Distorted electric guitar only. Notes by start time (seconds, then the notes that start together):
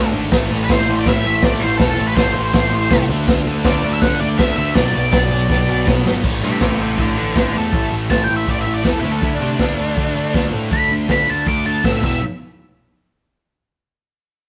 Already playing: D3 A3 D4
0.14 D3 A3 D4
0.32 A2 E3 A3
0.51 A2 E3 A3
0.69 A2 E3 A3
0.88 A2 E3 A3
1.06 A2 E3 A3
1.25 A2 E3 A3
1.44 A2 E3 A3
1.62 A2 E3 A3
1.79 A2 E3 A3
1.98 A2 E3 A3
2.17 A2 E3 A3
2.35 A2 E3 A3
2.53 A2 E3 A3
2.72 A2 E3 A3
2.91 A2 E3 A3
3.09 D3 A3 D4
3.27 D3 A3 D4
3.46 D3 A3 D4
3.65 D3 A3 D4
3.84 D3 A3 D4
4.02 D3 A3 D4
4.21 D3 A3 D4
4.39 D3 A3 D4
4.57 D3 A3 D4
4.76 B2 F#3 B3
4.94 B2 F#3 B3
5.12 B2 F#3 B3
5.31 B2 F#3 B3
5.49 B2 F#3 B3
5.68 B2 F#3 B3
5.86 B2 F#3 B3
6.04 B2 F#3 B3
6.23 A2 E3 A3
6.41 A2 E3 A3
6.60 A2 E3 A3
6.79 A2 E3 A3
6.97 A2 E3 A3
7.16 A2 E3 A3
7.35 A2 E3 A3
7.53 A2 E3 A3
7.72 A2 E3 A3
7.90 A2 E3 A3
8.10 A2 E3 A3
8.28 A2 E3 A3
8.47 A2 E3 A3
8.66 A2 E3 A3
8.84 A2 E3 A3
9.03 D3 A3 D4
9.21 D3 A3 D4
9.40 D3 A3 D4
9.59 D3 A3 D4
9.78 D3 A3 D4
9.96 D3 A3 D4
10.15 D3 A3 D4
10.34 D3 A3 D4
10.52 D3 A3 D4
10.72 D3 A3 D4
10.90 D3 A3 D4
11.08 D3 A3 D4
11.26 D3 A3 D4
11.45 D3 A3 D4
11.64 D3 A3 D4
11.84 D3 A3 D4
12.01 E2 B2 E3